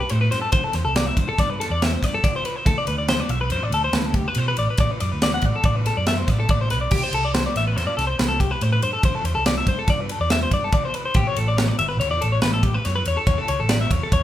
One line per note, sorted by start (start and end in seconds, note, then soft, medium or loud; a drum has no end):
0.00 0.10 B4 medium
0.09 0.28 A2 loud
0.09 0.21 C5 loud
0.09 ride loud
0.21 0.31 B4 medium
0.31 0.41 G2 medium
0.31 0.41 C5 medium
0.31 snare soft
0.31 ride medium
0.42 0.52 A4 medium
0.52 0.61 G2 loud
0.52 0.64 C5 medium
0.52 kick loud
0.52 ride loud
0.64 0.75 A4 medium
0.73 0.83 E2 loud
0.73 0.84 C5 medium
0.73 snare soft
0.73 ride medium
0.85 1.10 C2 medium
0.85 0.96 A4 medium
0.96 1.06 D5 medium
0.96 snare loud
0.96 ride loud
1.06 1.18 E5 medium
1.16 1.25 G2 loud
1.16 1.28 C5 medium
1.16 kick medium
1.16 ride medium
1.29 1.39 A4 medium
1.38 1.64 G2 medium
1.38 1.50 D5 medium
1.38 kick loud
1.38 snare soft
1.38 ride loud
1.50 1.60 B4 medium
1.60 1.71 A4 medium
1.60 snare soft
1.60 ride medium
1.70 1.95 E2 medium
1.70 1.83 D5 medium
1.82 1.93 E5 medium
1.82 snare loud
1.82 ride loud
1.93 2.04 C5 medium
2.02 2.19 G2 loud
2.02 2.14 D5 medium
2.02 kick medium
2.02 snare soft
2.02 ride medium
2.14 2.25 A4 medium
2.24 2.35 D5 medium
2.24 kick loud
2.24 ride loud
2.36 2.45 C5 medium
2.45 2.56 B4 medium
2.45 ride medium
2.56 2.67 C5 medium
2.66 2.74 D2 loud
2.66 2.77 A4 medium
2.66 kick loud
2.66 ride loud
2.78 2.87 D5 medium
2.87 3.21 D2 loud
2.87 2.98 B4 medium
2.87 ride medium
2.98 3.09 D5 medium
3.08 3.20 C5 medium
3.08 snare loud
3.08 ride loud
3.20 3.30 D5 medium
3.29 3.52 B1 loud
3.29 3.41 E5 medium
3.29 ride medium
3.41 3.52 B4 medium
3.50 3.61 F#2 loud
3.50 3.63 C5 medium
3.50 ride loud
3.61 3.70 A1 medium
3.61 3.73 D5 medium
3.70 3.88 D2 loud
3.70 3.84 A4 medium
3.70 ride medium
3.84 3.95 C5 medium
3.93 4.27 D2 loud
3.93 4.06 B4 loud
3.93 snare loud
3.93 ride loud
4.06 4.15 A4 medium
4.14 4.28 G4 medium
4.14 kick medium
4.14 ride medium
4.28 4.38 B4 medium
4.35 4.53 B2 loud
4.35 4.48 C5 medium
4.35 ride loud
4.48 4.58 B4 medium
4.57 4.66 A1 loud
4.57 4.69 D5 medium
4.57 ride medium
4.70 4.80 B4 medium
4.77 4.87 A1 loud
4.77 4.91 D5 medium
4.77 kick loud
4.77 ride loud
4.91 5.01 B4 medium
5.00 5.09 F#2 loud
5.00 5.12 D5 medium
5.00 ride medium
5.12 5.37 D2 medium
5.12 5.22 B4 medium
5.22 5.33 D5 medium
5.22 snare loud
5.22 ride loud
5.34 5.46 F#5 medium
5.42 5.51 A1 loud
5.42 kick medium
5.42 ride medium
5.46 5.55 D5 medium
5.56 5.65 A4 medium
5.63 5.89 A1 medium
5.63 5.76 D5 medium
5.63 kick loud
5.63 ride loud
5.76 5.86 B4 medium
5.86 5.97 A4 medium
5.86 snare soft
5.86 ride medium
5.97 6.22 F#2 medium
5.97 6.07 D5 medium
6.06 6.18 E5 loud
6.06 snare loud
6.06 ride loud
6.18 6.29 C5 medium
6.28 6.45 A1 medium
6.28 6.39 D5 medium
6.28 kick medium
6.28 snare soft
6.28 ride medium
6.40 6.50 A4 medium
6.49 6.68 A1 medium
6.49 6.61 D5 medium
6.49 kick loud
6.49 ride loud
6.61 6.70 C5 medium
6.70 6.90 B1 medium
6.70 6.81 B4 medium
6.70 snare soft
6.70 ride medium
6.81 6.92 D5 medium
6.91 7.00 C2 loud
6.91 7.02 G4 medium
6.91 kick loud
6.91 crash loud
7.03 7.13 C5 medium
7.13 7.46 C2 medium
7.13 7.24 A4 medium
7.13 ride medium
7.25 7.34 D5 medium
7.34 7.45 C5 medium
7.34 snare loud
7.34 ride loud
7.46 7.56 D5 medium
7.56 7.76 A1 loud
7.56 7.67 E5 medium
7.56 snare soft
7.56 ride medium
7.67 7.76 B4 medium
7.76 7.87 E2 loud
7.76 7.87 C5 medium
7.76 snare soft
7.76 ride loud
7.87 7.96 G2 medium
7.87 7.97 D5 medium
7.97 8.14 C2 medium
7.97 8.07 A4 medium
7.97 snare soft
7.97 ride medium
8.07 8.19 C5 medium
8.19 8.52 C2 loud
8.19 8.28 B4 loud
8.19 snare loud
8.19 ride medium
8.28 8.40 A4 medium
8.40 8.51 G4 medium
8.40 kick medium
8.40 ride medium
8.51 8.62 B4 medium
8.61 8.78 A2 loud
8.61 8.72 C5 medium
8.61 ride loud
8.73 8.83 B4 medium
8.82 8.91 G2 medium
8.82 8.93 C5 medium
8.82 ride medium
8.93 9.04 A4 medium
9.03 9.12 G2 medium
9.03 9.15 C5 medium
9.03 kick loud
9.03 ride loud
9.15 9.25 A4 medium
9.24 9.33 E2 loud
9.24 9.35 C5 medium
9.24 ride medium
9.35 9.60 C2 medium
9.35 9.46 A4 medium
9.46 9.57 D5 medium
9.46 snare loud
9.46 ride loud
9.58 9.68 E5 medium
9.67 9.75 G2 loud
9.67 9.78 C5 medium
9.67 kick medium
9.67 ride medium
9.79 9.89 A4 medium
9.88 10.13 G2 medium
9.88 10.00 D5 medium
9.88 kick loud
9.88 snare soft
9.88 ride loud
10.00 10.11 B4 medium
10.09 10.21 A4 medium
10.09 ride medium
10.20 10.45 E2 medium
10.20 10.31 D5 medium
10.30 10.42 E5 medium
10.30 snare loud
10.30 ride loud
10.43 10.53 C5 medium
10.51 10.68 G2 medium
10.51 10.63 D5 medium
10.51 kick medium
10.51 ride medium
10.64 10.74 A4 medium
10.72 10.84 D5 medium
10.72 kick loud
10.72 ride loud
10.85 10.95 C5 medium
10.94 11.05 B4 medium
10.94 ride medium
11.06 11.16 C5 medium
11.14 11.23 A1 loud
11.14 11.26 G4 medium
11.14 kick loud
11.14 ride loud
11.27 11.37 C#5 medium
11.36 11.70 A1 loud
11.36 11.48 A4 medium
11.36 ride medium
11.48 11.57 D5 medium
11.57 11.68 C#5 medium
11.57 snare loud
11.57 ride loud
11.68 11.78 D5 medium
11.79 12.00 G1 loud
11.79 11.88 E5 medium
11.79 ride medium
11.89 11.99 B4 medium
12.00 12.10 C#2 medium
12.00 12.10 C#5 medium
12.00 ride loud
12.10 12.19 E2 medium
12.10 12.21 D5 medium
12.21 12.38 A1 loud
12.21 12.32 A4 medium
12.21 ride medium
12.32 12.42 C#5 medium
12.42 12.76 A1 loud
12.42 12.53 B4 loud
12.42 snare loud
12.42 ride medium
12.53 12.63 A4 medium
12.63 12.74 G4 medium
12.63 kick medium
12.63 ride medium
12.74 12.85 B4 medium
12.85 13.02 F#2 loud
12.85 12.95 C#5 medium
12.85 snare soft
12.85 ride loud
12.96 13.06 B4 medium
13.05 13.14 E2 medium
13.05 13.18 C#5 medium
13.05 ride medium
13.17 13.27 A4 medium
13.27 13.35 E2 loud
13.27 13.38 C#5 medium
13.27 kick loud
13.27 ride loud
13.38 13.49 A4 medium
13.48 13.57 C#2 medium
13.48 13.59 C#5 medium
13.48 ride medium
13.59 13.84 A1 medium
13.59 13.70 A4 medium
13.69 13.80 D5 medium
13.69 snare loud
13.69 ride loud
13.81 13.91 E5 medium
13.91 13.99 E2 loud
13.91 14.02 C#5 medium
13.91 kick medium
13.91 ride medium
14.03 14.13 A4 medium
14.12 14.23 E2 medium
14.12 14.23 C#5 medium
14.12 kick loud
14.12 ride loud